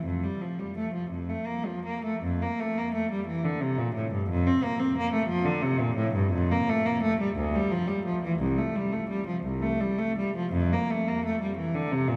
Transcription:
0.04 F2
0.23 G3
0.41 F3
0.59 G3
0.77 A3
0.94 F3
1.10 F2
1.29 A3
1.46 A#3
1.66 F3
1.85 A#3
2.05 A3
2.23 F2
2.42 A#3
2.60 A3
2.78 A#3
2.95 A3
3.11 G3
3.27 E3
3.44 D3
3.61 C3
3.78 A#2
3.95 A2
4.12 G2
4.29 F2
4.47 C4
4.64 A#3
4.80 C4
4.97 A#3
5.13 A3
5.28 F3
5.45 D3
5.62 C3
5.80 A#2
5.96 A2
6.14 G2
6.32 F2
6.52 A#3
6.70 A3
6.86 A#3
7.03 A3
7.20 G3
7.36 D2
7.55 G3
7.71 F3
7.87 G3
8.06 F3
8.23 E3
8.39 C2
8.58 A3
8.76 G3
8.92 A3
9.09 G3
9.27 F3
9.44 C2
9.63 A3
9.81 G3
9.98 A3
10.18 G3
10.36 F3
10.52 F2
10.73 A#3
10.91 A3
11.08 A#3
11.25 A3
11.42 G3
11.57 E3
11.74 D3
11.92 C3
12.08 A#2

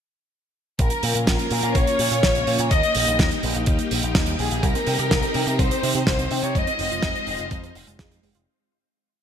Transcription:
0.79 A#1 A#3 C#4 F4 A#4, kick, closed hi-hat
0.90 closed hi-hat
1.03 A#2, open hi-hat
1.15 A#2, closed hi-hat
1.27 A#1 A#4, kick, snare, closed hi-hat
1.39 closed hi-hat
1.50 A#2, open hi-hat
1.63 A#2, closed hi-hat
1.75 A#1 C#5, kick, closed hi-hat
1.87 closed hi-hat
1.99 A#2, open hi-hat
2.11 A#2, closed hi-hat
2.23 A#1, kick, snare, closed hi-hat
2.35 closed hi-hat
2.47 A#2, open hi-hat
2.59 A#2, closed hi-hat
2.71 D#2 D#4 G4 D#5, kick, closed hi-hat
2.83 closed hi-hat
2.95 A#1, open hi-hat
3.07 A#1, closed hi-hat
3.19 D#2, kick, snare, closed hi-hat
3.31 closed hi-hat
3.43 A#1, open hi-hat
3.55 A#1, closed hi-hat
3.66 D#2, kick, closed hi-hat
3.79 closed hi-hat
3.91 A#1, open hi-hat
4.03 A#1, closed hi-hat
4.15 D#2, kick, snare, closed hi-hat
4.26 closed hi-hat
4.39 A#1 G#4, open hi-hat
4.51 A#1, closed hi-hat
4.63 C2 G3 C4 D#4 A#4, kick, closed hi-hat
4.75 C4, closed hi-hat
4.87 C3 D#4, open hi-hat
4.99 C3 G4, closed hi-hat
5.11 C2 G3, kick, snare, closed hi-hat
5.23 C4, closed hi-hat
5.34 C3 D#4, open hi-hat
5.47 C3 G4, closed hi-hat
5.59 C2 G3 C5, kick, closed hi-hat
5.71 C4, closed hi-hat
5.83 C3 D#4, open hi-hat
5.95 C3 G4, closed hi-hat
6.07 C2 G3 C5, kick, snare, closed hi-hat
6.19 C4, closed hi-hat
6.31 C3 D#4, open hi-hat
6.43 C3 G4 C#5, closed hi-hat
6.55 F2 G#3 F4 C5 D#5, kick, closed hi-hat
6.67 C4, closed hi-hat
6.79 F1 D#4, open hi-hat
6.91 F1 F4, closed hi-hat
7.03 F2 G#3, kick, snare, closed hi-hat
7.15 C4, closed hi-hat
7.27 F1 D#4, open hi-hat
7.39 F1 F4, closed hi-hat
7.51 F2 G#3, kick, closed hi-hat
7.63 C4, closed hi-hat
7.75 F1 D#4, open hi-hat
7.87 F1 G#3, closed hi-hat
7.99 F2 G#4, kick, snare, closed hi-hat
8.11 G#3, closed hi-hat
8.23 F1 G#3, open hi-hat
8.35 F1 F4, closed hi-hat

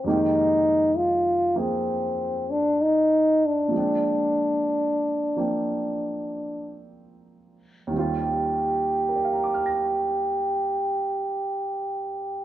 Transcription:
0.04 F2 C3 D#3 G#3 A#3 D#4
0.09 G4
0.97 F4
1.55 F3 A#3 C4 F4 G#4
2.50 D4
2.82 D#4
3.45 D4
3.68 A#2 F3
3.74 G#3 C4
3.79 D4
5.36 F3 A#3 C4
7.87 D#2 D#3
7.93 G3 C4 G4
7.99 F4
9.09 A#4
9.16 D5
9.25 F5
9.33 A#5
9.44 D6
9.54 F6
9.66 A#6

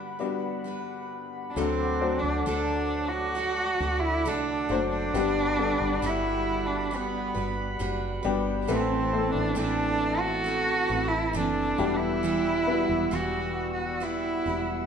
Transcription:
Already playing: D3 G3 B3 D4 F#4 B4 F#5 B5
0.19 G3 B3 D4 F#4 B4
0.64 G3 D4 F#4 B4
1.50 D4
1.55 D2 D3 F#3 A3 C4 D4 F#4 A4 F#5 D6
2.01 F#3 A3 D4 F#4 C5
2.19 D4
2.23 D2
2.46 D2 D3 A3 D4 F#4 A4
3.08 F#4
3.35 A3 D4 F#4 A4
3.80 D2 D4 F#4 A4
4.00 E4
4.25 C2 D3 A3 D4 F#4 A4
4.69 F#1 F#3 A3 D4 F#4 A4 C5
4.89 D4
5.14 G1 G2 D3 G3 B3 D4 F#4 G4 B4 B5
5.58 G3 B3 D4 F#4 A4
5.80 G1
6.02 G1 G2 D3 G3 D4 F#4 B4
6.07 E4
6.66 D4
6.91 G3 D4 F#4 B4
6.96 B3
7.34 G1 G3 D4 F#4 B4
7.79 F#1 D3 G3 D4 F#4 B4
8.23 G1 G3 B3 D4 F#4 G4 B4
8.67 A1 A2 E3 A3 C4 E4 A4 B4 A5
9.13 A3 B3 C4 E4 A4
9.32 A1 D4
9.55 A1 A2 E3 A3 C4 E4 B4
9.61 D4
10.19 F#4
10.44 A3 C4 E4 B4
10.89 A1 A3 C4 E4 B4
11.08 E4
11.33 F#1 A2 E3 A3 C4 E4 B4
11.37 D4
11.78 E1 E3 G3 B3 E4 F#4 G4 F#5 E6
11.96 E4
12.23 E3 G3 B3 F#4 G4
12.67 G3 B3 E4 F#4 B4
12.89 E1
13.11 E1 E3 G3 B3 F#4
13.15 F#4
13.56 F#5
13.73 F#4
14.00 G3 B3 E4 F#4 G4
14.46 E1 B3 F#4 G4

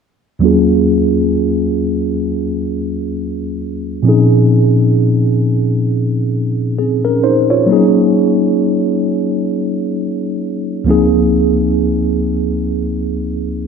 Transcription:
0.39 D#2 F#3 A#3 C#4
0.44 F4 G#4
4.03 A#2 F3 C4 C#4
4.08 D#4 G#4
6.79 C4 G#4
7.05 C#4 A#4
7.24 D#4 C5
7.50 F4 C#5
7.66 F#3 A#3 C4
7.71 D#4 G#4
7.76 C#4
10.84 C#2 F3 A#3 C4
10.89 D#4 G#4

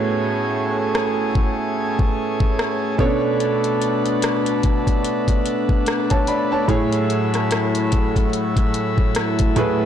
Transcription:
Already playing: A2 A3 B3 C#4 F#4 G#4 C#5 E5
0.95 cross-stick
1.35 kick
1.99 kick
2.40 kick
2.59 cross-stick
2.98 B2 B3 C#4 D4 A4 C#5, kick
3.06 D4
3.40 closed hi-hat
3.64 closed hi-hat
3.82 closed hi-hat
4.06 closed hi-hat
4.22 cross-stick, closed hi-hat
4.46 closed hi-hat
4.63 kick, closed hi-hat
4.87 kick, closed hi-hat
5.04 closed hi-hat
5.28 kick, closed hi-hat
5.46 closed hi-hat
5.69 kick
5.86 cross-stick, closed hi-hat
6.10 C#5 A5, kick, closed hi-hat
6.27 D5 B5, closed hi-hat
6.52 C#5 A5
6.68 A2 F#3 A3 E4 G#4 C#5, kick, closed hi-hat
6.92 closed hi-hat
7.10 closed hi-hat
7.34 cross-stick, closed hi-hat
7.51 cross-stick, closed hi-hat
7.75 closed hi-hat
7.92 kick, closed hi-hat
8.16 kick, closed hi-hat
8.33 closed hi-hat
8.57 kick, closed hi-hat
8.74 closed hi-hat
8.98 kick
9.15 cross-stick, closed hi-hat
9.39 kick, closed hi-hat
9.56 A2 A3 E4 G#4 B4, closed hi-hat

